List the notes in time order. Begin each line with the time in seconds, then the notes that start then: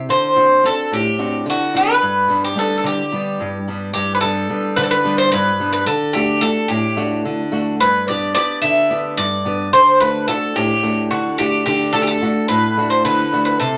0.09 D3 C5
0.36 C4 D4 F#4
0.63 C4 D4 F#4 A4
0.92 A2 G4
1.19 C4 D4 F#4
1.46 D3 F#4
1.74 C4 D4 F#4 B4
2.02 G2
2.28 G3 B3 D4
2.45 G4
2.56 G3 B3 D4 A4
2.78 A4
2.84 D3 G4
3.12 G3 B3 D4
3.40 G2
3.68 G3 B3 D4
3.94 G2 G4
4.15 B4
4.21 G3 B3 D4 A4
4.50 G3 B3 D4
4.76 D3 B4
4.83 A4
4.91 B4
5.04 G3 B3 D4
5.18 C5
5.32 G2 B4
5.59 G3 B3 D4
5.73 B4
5.86 D3 A4
6.13 A3 D4 F#4 G4
6.41 A3 D4 F#4 A4
6.68 A2 G4
6.96 A3 D4 F#4
7.25 D3
7.52 A3 D4 F#4
7.80 G2 B4
8.08 B3 D4 G4 D5
8.34 B3 D4 G4 D5
8.62 D3 E5
8.90 B3 D4 G4
9.17 G2 D5
9.45 B3 D4 G4
9.73 D3 C5
10.00 A3 D4 F#4 B4
10.28 A3 D4 F#4 A4
10.56 A2 G4
10.83 A3 D4 F#4
11.11 D3 F#4
11.38 A3 D4 F#4 G4
11.66 D3 G4
11.93 A3 D4 F#4 A4
12.02 G4
12.07 A4
12.21 A3 D4 F#4
12.48 A2 B4
12.77 A3 D4 F#4
12.90 C5
13.05 D3 B4
13.32 A3 D4 F#4
13.45 B4
13.60 C3 A4